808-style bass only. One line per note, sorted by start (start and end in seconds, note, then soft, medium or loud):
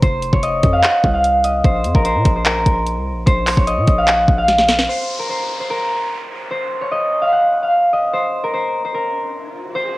0.02 0.32 F1 loud
0.33 0.62 F1 loud
0.63 0.83 F2 loud
1.04 1.62 C2 loud
1.65 1.86 A#1 loud
1.85 1.94 F2 loud
1.95 2.17 A#1 loud
2.15 2.25 A#2 loud
2.25 2.64 A#1 loud
2.66 2.98 A#1 loud
2.96 3.13 C2 loud
3.12 3.26 A#1 loud
3.27 3.56 A#1 loud
3.57 3.79 A#1 loud
3.77 3.87 A#2 loud
3.88 4.27 A#1 loud
4.28 4.87 A#1 loud